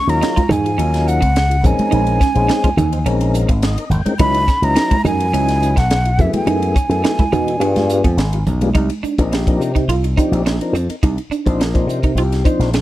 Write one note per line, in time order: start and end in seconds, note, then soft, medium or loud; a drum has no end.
0.00 0.11 C#4 medium
0.00 0.11 C#6 loud
0.07 0.21 D#2 medium
0.07 0.43 F#3 medium
0.07 0.43 C#4 medium
0.07 0.43 D#4 medium
0.07 0.43 F4 medium
0.07 0.43 A#4 medium
0.07 0.53 A#5 medium
0.07 ride medium
0.21 0.31 D#4 medium
0.21 snare loud
0.21 ride medium
0.36 0.45 F4 medium
0.36 muted slap bass stroke soft
0.36 kick medium
0.36 ride medium
0.36 high conga medium
0.49 0.76 G#2 medium
0.49 0.67 D#4 medium
0.49 1.09 G#5 medium
0.49 hi-hat pedal medium
0.49 low conga medium
0.65 0.72 F4 soft
0.65 0.72 G#4 soft
0.65 ride medium
0.78 1.19 D#2 loud
0.78 1.22 F#3 medium
0.78 0.96 C#4 medium
0.78 1.22 C#4 medium
0.78 1.22 D#4 medium
0.78 1.22 F4 medium
0.78 1.22 A#4 medium
0.78 ride medium
0.94 snare soft
0.94 ride medium
1.08 1.68 F#5 medium
1.08 hi-hat pedal medium
1.21 1.64 C#2 medium
1.21 1.38 C4 medium
1.21 kick medium
1.21 ride medium
1.36 snare medium
1.36 ride medium
1.50 1.57 F4 soft
1.50 1.57 G#4 soft
1.50 ride medium
1.63 1.78 A#1 medium
1.63 2.21 G#3 medium
1.63 2.21 C4 medium
1.63 2.21 C#4 medium
1.63 2.21 D#4 medium
1.63 2.21 A#4 medium
1.63 3.36 G#5 medium
1.63 kick loud
1.63 hi-hat pedal medium
1.63 low conga medium
1.79 ride medium
1.79 high conga medium
1.91 2.19 A#1 medium
1.91 2.09 D#4 medium
1.91 ride medium
2.07 ride medium
2.21 2.38 C#4 medium
2.21 kick medium
2.21 snare soft
2.21 hi-hat pedal medium
2.35 2.48 A#1 medium
2.35 2.70 G#3 medium
2.35 2.69 C4 medium
2.35 2.70 C#4 medium
2.35 2.70 D#4 medium
2.35 2.70 G#4 medium
2.35 ride medium
2.48 2.58 D#4 medium
2.48 snare loud
2.48 ride medium
2.64 2.72 F4 medium
2.64 muted slap bass stroke soft
2.64 kick medium
2.64 ride medium
2.64 high conga medium
2.77 3.04 D#2 medium
2.77 2.95 D#4 medium
2.77 hi-hat pedal medium
2.77 low conga medium
2.92 2.99 D#4 soft
2.92 2.99 C5 soft
2.92 ride medium
3.05 3.46 A#1 medium
3.05 3.50 G#3 medium
3.05 3.50 C4 medium
3.05 3.50 C#4 medium
3.05 3.23 C#4 medium
3.05 3.50 D#4 medium
3.05 3.50 A#4 medium
3.05 ride medium
3.21 ride medium
3.34 hi-hat pedal medium
3.49 3.76 G#1 medium
3.49 3.66 C4 medium
3.49 kick medium
3.49 ride medium
3.62 3.90 D#5 medium
3.62 snare medium
3.62 ride medium
3.78 3.85 D#4 soft
3.78 3.85 A#4 soft
3.78 ride medium
3.90 4.04 G#1 medium
3.90 4.18 G5 medium
3.90 hi-hat pedal medium
3.90 low conga medium
4.05 4.14 G#3 medium
4.05 4.14 C4 medium
4.05 4.14 C#4 medium
4.05 4.14 D#4 medium
4.05 4.14 A#4 medium
4.05 muted slap bass stroke soft
4.05 ride medium
4.05 high conga medium
4.19 4.47 C#2 medium
4.19 4.46 F#3 medium
4.19 4.46 C#4 medium
4.19 4.46 D#4 medium
4.19 4.37 D#4 medium
4.19 4.46 E4 medium
4.19 4.46 B4 loud
4.19 4.66 B5 loud
4.19 kick loud
4.19 ride medium
4.34 ride medium
4.48 4.65 C#4 medium
4.48 kick medium
4.48 snare soft
4.48 hi-hat pedal medium
4.62 4.75 C#2 medium
4.62 4.97 F#3 medium
4.62 4.97 C#4 medium
4.62 4.98 D#4 medium
4.62 4.98 E4 medium
4.62 4.97 B4 medium
4.62 5.05 A#5 loud
4.62 ride medium
4.76 4.85 D#4 medium
4.76 snare loud
4.76 ride medium
4.91 5.00 E4 medium
4.91 muted slap bass stroke soft
4.91 kick medium
4.91 ride medium
4.91 high conga medium
5.04 5.31 F#2 medium
5.04 5.22 D#4 medium
5.04 5.80 G#5 loud
5.04 hi-hat pedal medium
5.04 low conga medium
5.20 5.27 E4 soft
5.20 5.27 B4 soft
5.20 ride medium
5.33 5.74 C#2 loud
5.33 5.77 F#3 medium
5.33 5.77 C#4 medium
5.33 5.51 C#4 medium
5.33 5.77 D#4 medium
5.33 5.77 E4 medium
5.33 5.77 B4 medium
5.33 ride medium
5.48 snare soft
5.48 ride medium
5.62 hi-hat pedal medium
5.76 6.20 B1 medium
5.76 5.94 B3 medium
5.76 6.23 F#5 medium
5.76 kick medium
5.76 snare soft
5.76 ride medium
5.91 snare loud
5.91 ride medium
6.05 6.12 E4 soft
6.05 6.12 F#4 soft
6.05 ride medium
6.18 6.33 F#2 medium
6.18 6.76 F#3 medium
6.18 6.76 A3 medium
6.18 6.76 B3 medium
6.18 6.76 E4 medium
6.18 6.76 G#4 medium
6.18 6.35 E5 medium
6.18 kick medium
6.18 hi-hat pedal medium
6.18 low conga medium
6.33 8.43 G#5 medium
6.33 muted slap bass stroke soft
6.33 ride medium
6.33 high conga medium
6.47 6.74 F#2 medium
6.47 6.64 D#4 medium
6.47 ride medium
6.62 ride medium
6.76 6.93 C#4 medium
6.76 kick medium
6.76 hi-hat pedal medium
6.89 7.03 F#2 medium
6.89 7.25 F#3 medium
6.89 7.25 A3 medium
6.89 7.25 B3 medium
6.89 7.25 E4 medium
6.89 7.25 A4 medium
6.89 ride medium
7.04 7.13 D#4 medium
7.04 snare loud
7.04 ride medium
7.19 7.27 E4 medium
7.19 muted slap bass stroke soft
7.19 kick medium
7.19 ride medium
7.19 high conga medium
7.32 7.59 B2 medium
7.32 7.50 D#4 medium
7.32 hi-hat pedal medium
7.32 low conga medium
7.47 7.54 E4 soft
7.47 7.54 A4 soft
7.47 ride medium
7.60 8.01 G2 loud
7.60 8.05 G3 medium
7.60 8.05 B3 medium
7.60 8.05 D4 medium
7.60 7.78 D4 medium
7.60 8.05 F4 medium
7.60 8.05 G#4 medium
7.60 ride medium
7.76 snare soft
7.76 ride medium
7.76 high conga medium
7.89 hi-hat pedal medium
8.04 8.16 F2 medium
8.04 8.21 B3 medium
8.04 kick medium
8.04 ride medium
8.17 8.43 G#1 medium
8.17 snare loud
8.17 ride medium
8.33 8.40 F4 soft
8.33 8.40 G4 soft
8.33 ride medium
8.46 8.72 B1 medium
8.46 hi-hat pedal medium
8.46 low conga medium
8.61 8.70 G3 medium
8.61 8.70 B3 medium
8.61 8.70 D4 medium
8.61 8.70 F4 medium
8.61 8.70 G#4 loud
8.61 ride medium
8.61 high conga medium
8.75 8.89 C2 medium
8.75 8.92 D#4 medium
8.75 kick loud
8.75 ride medium
8.90 ride medium
9.03 9.20 D4 medium
9.03 muted slap bass stroke soft
9.03 hi-hat pedal medium
9.18 9.58 A#1 medium
9.18 9.35 F3 medium
9.18 9.35 C4 medium
9.18 9.35 D4 medium
9.18 9.35 D#4 medium
9.18 9.35 A#4 medium
9.18 kick medium
9.18 ride medium
9.32 9.85 G4 medium
9.32 snare medium
9.32 ride medium
9.47 9.72 F3 medium
9.47 9.72 C4 medium
9.47 9.72 D4 medium
9.47 9.72 D#4 medium
9.47 9.72 A#4 medium
9.47 kick medium
9.47 ride medium
9.60 9.90 C3 medium
9.60 hi-hat pedal medium
9.75 9.83 D#4 medium
9.75 kick medium
9.75 ride medium
9.88 10.15 C2 medium
9.88 9.96 D#4 soft
9.88 10.06 F4 medium
9.88 9.96 A#4 soft
9.88 ride medium
10.04 ride medium
10.17 10.43 F3 medium
10.17 10.43 C4 medium
10.17 10.43 D4 medium
10.17 10.34 D#4 medium
10.17 10.43 D#4 medium
10.17 10.43 G4 medium
10.17 kick medium
10.17 hi-hat pedal medium
10.32 10.58 A#1 medium
10.32 ride medium
10.46 10.63 D4 medium
10.46 snare medium
10.46 ride medium
10.61 10.78 F3 medium
10.61 10.78 C4 medium
10.61 10.77 D4 medium
10.61 10.78 D#4 medium
10.61 10.78 A#4 medium
10.61 ride medium
10.73 10.87 F2 medium
10.73 10.92 C4 medium
10.73 hi-hat pedal medium
10.89 10.96 D#4 soft
10.89 10.96 A#4 soft
10.89 muted slap bass stroke soft
10.89 ride medium
11.03 11.17 C2 medium
11.03 11.20 D#4 medium
11.03 kick loud
11.03 ride medium
11.18 ride medium
11.30 11.48 D4 medium
11.30 muted slap bass stroke soft
11.30 hi-hat pedal medium
11.46 11.85 A#1 medium
11.46 11.62 F3 medium
11.46 11.62 C4 medium
11.46 11.62 D4 medium
11.46 11.62 D#4 medium
11.46 11.62 C5 medium
11.46 kick medium
11.46 ride soft
11.60 12.13 A#4 medium
11.60 snare loud
11.60 ride medium
11.74 12.00 F3 medium
11.74 12.00 C4 medium
11.74 12.00 D4 medium
11.74 12.00 D#4 medium
11.74 12.00 C5 medium
11.74 kick medium
11.74 ride soft
11.87 12.17 C3 medium
11.87 hi-hat pedal medium
12.03 12.12 D#4 medium
12.03 kick medium
12.03 ride medium
12.15 12.42 C2 loud
12.15 12.23 D#4 soft
12.15 12.35 F4 medium
12.15 12.44 G4 medium
12.15 12.23 C5 soft
12.15 ride medium
12.32 snare soft
12.32 ride medium
12.44 12.70 F3 medium
12.44 12.70 C4 medium
12.44 12.70 D4 medium
12.44 12.70 D#4 medium
12.44 12.63 D#4 medium
12.44 12.70 C5 loud
12.44 kick medium
12.44 hi-hat pedal medium
12.59 12.81 A#1 medium
12.59 snare soft
12.59 ride medium
12.73 12.81 D4 medium
12.73 snare medium
12.73 ride medium